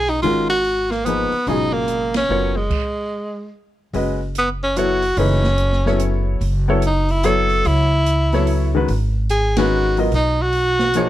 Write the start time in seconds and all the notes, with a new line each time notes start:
Already playing: B1 C#3 F#3 B3 F4 G#4
0.08 D#4, open hi-hat
0.22 G#1 D#3 G#3 C#4 F4 F#4 A#4, open hi-hat
0.50 F#4
0.64 open hi-hat
0.91 A#3, snare
1.06 F3 A#3 B3 D#4 G#4 B4, closed hi-hat
1.32 muted upright bass stroke, open hi-hat
1.47 G#1 B2 C#3 F#3 D#4 F4 G#4, open hi-hat
1.73 A#3
1.88 closed hi-hat
2.14 C#4, snare, ride
2.29 F#1 F#3 B3 F4 A#4 C#5
2.57 G#3
2.70 kick, crash
3.93 F#1 G#3 C#4 F#4 B4 D#5, open hi-hat
4.35 B3, closed hi-hat
4.63 C#4
4.76 F#3 B3 E4 F#4 A4 C#5, closed hi-hat
5.02 open hi-hat
5.17 F#1 E3 A3 C#4 D#4 G#4 B4, open hi-hat
5.44 snare
5.58 closed hi-hat
5.72 snare
5.86 F#3 B3 E4 A4 C#5, snare
6.00 closed hi-hat
6.41 F#1, open hi-hat
6.68 F#3 B3 E4 A4 C#5
6.82 closed hi-hat
6.86 D#4
7.09 E4, open hi-hat
7.23 F#3 B3 E4 A4 C#5, closed hi-hat
7.50 open hi-hat
7.65 C#2 E4, open hi-hat
8.06 closed hi-hat
8.32 F#3 B3 E4 A4 C#5, snare, open hi-hat
8.47 open hi-hat
8.75 D#3 G#3 C#4 F#4 B4
8.88 G#1, open hi-hat
9.30 G#4, closed hi-hat
9.56 D#3 G#3 C#4 F#4 B4, snare, ride
9.97 F#3 B3 F4 A#4 D#5, open hi-hat
10.11 B1 D#4, open hi-hat
10.42 F#4
10.53 open hi-hat
10.79 snare
10.94 F3 A#3 D#4 G#4 C#5, closed hi-hat